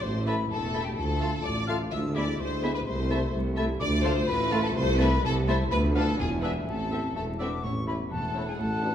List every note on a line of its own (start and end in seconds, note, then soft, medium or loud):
0.01 0.43 A1 medium
0.01 0.43 A2 medium
0.01 1.88 A3 medium
0.01 0.94 E4 medium
0.01 0.26 C5 medium
0.01 0.25 C6 loud
0.26 0.35 A3 medium
0.26 0.34 A3 medium
0.26 0.36 E4 medium
0.26 0.34 A4 soft
0.26 0.34 B4 medium
0.26 0.35 E5 medium
0.26 0.36 A5 medium
0.26 0.50 B5 medium
0.50 0.90 E1 medium
0.50 0.90 E2 medium
0.50 0.86 A4 loud
0.50 0.83 A5 medium
0.73 0.83 A3 medium
0.73 0.83 E4 medium
0.73 0.82 A4 medium
0.73 0.82 E5 medium
0.73 0.82 A5 medium
0.84 0.99 G4 medium
0.84 0.90 G5 medium
0.95 1.37 D2 medium
0.95 1.38 D2 medium
0.95 1.92 F4 medium
0.95 1.44 A4 medium
0.95 1.43 A5 medium
1.20 1.29 A3 medium
1.20 1.30 A3 soft
1.20 1.31 F4 medium
1.20 1.30 A4 medium
1.20 1.29 F5 medium
1.20 1.30 A5 medium
1.43 1.84 A1 medium
1.43 1.85 A1 medium
1.43 1.85 A2 medium
1.43 1.68 D5 loud
1.43 1.66 D6 medium
1.67 1.77 A3 medium
1.67 1.76 A3 medium
1.67 1.78 F4 medium
1.67 1.77 A4 medium
1.67 1.76 F5 medium
1.67 1.77 A5 medium
1.67 1.73 F6 medium
1.91 2.32 D2 medium
1.91 2.87 G#3 medium
1.91 3.81 E4 medium
1.91 1.99 E5 medium
1.91 2.16 E6 medium
2.15 2.25 G#3 medium
2.15 2.23 B3 medium
2.15 2.25 E4 soft
2.15 2.23 G#4 medium
2.15 2.39 D5 medium
2.15 2.23 E5 medium
2.15 2.25 B5 medium
2.15 2.41 D6 medium
2.39 2.79 D2 medium
2.39 2.74 C5 loud
2.39 2.76 C6 medium
2.63 2.72 G#3 medium
2.63 2.71 B3 medium
2.63 2.72 E4 medium
2.63 2.70 G#4 medium
2.63 2.71 E5 medium
2.63 2.72 B5 medium
2.74 2.80 B4 medium
2.74 2.85 B5 medium
2.86 3.26 C2 medium
2.86 3.80 A3 medium
2.86 3.33 C5 medium
2.86 3.32 C6 medium
3.10 3.18 A3 medium
3.10 3.19 A3 medium
3.10 3.19 E4 medium
3.10 3.18 A4 medium
3.10 3.18 E5 medium
3.10 3.19 A5 medium
3.33 3.73 C2 medium
3.33 3.74 C2 medium
3.57 3.66 A3 medium
3.57 3.66 E4 medium
3.57 3.65 A4 medium
3.57 3.64 E5 medium
3.57 3.66 A5 medium
3.79 4.20 D2 medium
3.79 4.21 D2 medium
3.79 5.67 A3 medium
3.79 4.72 F4 medium
3.79 4.03 D5 loud
3.79 3.85 D6 loud
4.03 4.12 A3 medium
4.03 4.13 A3 medium
4.03 4.13 F4 medium
4.03 4.12 A4 medium
4.03 4.28 C5 loud
4.03 4.12 F5 medium
4.03 4.13 A5 medium
4.03 4.10 C6 medium
4.27 4.67 A1 medium
4.27 4.68 A1 medium
4.27 4.68 A2 medium
4.27 4.63 B4 loud
4.27 4.62 B5 loud
4.51 4.61 A3 medium
4.51 4.61 F4 medium
4.51 4.61 A4 medium
4.51 4.59 F5 medium
4.51 4.60 A5 medium
4.63 4.76 A4 loud
4.63 4.68 A5 medium
4.74 5.15 C2 medium
4.74 5.15 C2 loud
4.74 5.71 E4 medium
4.74 4.99 C5 loud
4.74 4.80 C6 loud
4.98 5.08 A3 medium
4.98 5.07 A3 medium
4.98 5.08 E4 medium
4.98 5.07 A4 medium
4.98 5.24 B4 loud
4.98 5.08 E5 medium
4.98 5.07 A5 medium
4.98 5.23 B5 loud
5.23 5.60 C2 medium
5.23 5.63 C2 medium
5.23 5.33 A4 loud
5.23 5.30 A5 loud
5.47 5.55 A3 medium
5.47 5.57 A3 medium
5.47 5.57 E4 medium
5.47 5.55 A4 medium
5.47 5.57 C5 medium
5.47 5.56 E5 medium
5.47 5.56 A5 medium
5.47 5.54 C6 loud
5.70 6.11 D2 loud
5.70 6.11 D2 medium
5.70 6.18 B3 medium
5.70 6.17 F4 medium
5.70 5.79 B4 loud
5.70 5.77 B5 loud
5.95 6.03 B3 medium
5.95 6.03 D4 medium
5.95 6.04 D4 medium
5.95 6.19 A4 loud
5.95 6.02 B4 medium
5.95 6.04 F5 medium
5.95 6.03 F5 medium
5.95 6.18 A5 medium
6.18 6.59 E1 medium
6.18 6.59 E2 medium
6.18 6.67 D4 medium
6.18 7.16 E4 medium
6.18 6.28 G#4 loud
6.18 6.42 G#5 medium
6.42 6.52 B3 medium
6.42 6.50 D4 medium
6.42 6.51 D4 medium
6.42 6.52 G#4 medium
6.42 6.50 B4 medium
6.42 6.52 E5 medium
6.42 6.66 G#5 medium
6.66 7.07 A1 medium
6.66 7.08 A1 medium
6.66 7.08 A2 medium
6.66 7.16 C4 medium
6.66 7.15 A4 medium
6.66 7.15 A5 medium
6.91 7.01 A3 soft
6.91 7.00 C4 soft
6.91 7.01 C4 medium
6.91 7.00 A4 soft
6.91 7.00 E5 medium
7.14 7.57 E1 medium
7.14 7.57 E2 medium
7.14 7.26 A3 medium
7.14 7.27 A3 medium
7.14 7.24 A4 medium
7.14 7.21 A5 medium
7.39 7.65 B3 medium
7.39 7.48 C4 medium
7.39 7.50 C4 soft
7.39 7.51 D4 medium
7.39 7.48 A4 medium
7.39 7.48 D5 medium
7.39 7.48 E5 medium
7.39 7.49 E5 soft
7.39 7.65 D6 medium
7.63 8.03 A1 medium
7.63 8.03 A2 medium
7.63 7.76 C#4 medium
7.63 7.73 C#5 medium
7.63 7.87 C#6 medium
7.87 7.96 A3 soft
7.87 8.12 B3 medium
7.87 8.07 C#4 medium
7.87 7.97 E4 soft
7.87 8.06 A4 medium
7.87 7.97 B4 medium
7.87 8.07 C#5 medium
7.87 7.93 B5 medium
8.11 8.50 E1 medium
8.11 8.50 E2 medium
8.11 8.47 A3 medium
8.11 8.48 A4 medium
8.11 8.95 F#5 medium
8.11 8.47 A5 medium
8.36 8.45 A3 medium
8.36 8.54 C#4 medium
8.36 8.45 E4 soft
8.36 8.54 A4 medium
8.36 8.54 C#5 medium
8.47 8.60 G#3 medium
8.47 8.61 G#4 medium
8.47 8.53 G#5 medium
8.58 8.95 A1 medium
8.58 8.95 A2 medium
8.58 8.95 A3 medium
8.58 8.95 A4 medium
8.58 8.95 A5 medium
8.82 8.92 B3 soft
8.82 8.95 D4 medium
8.82 8.93 D4 soft
8.82 8.95 F#4 medium
8.82 8.95 B4 medium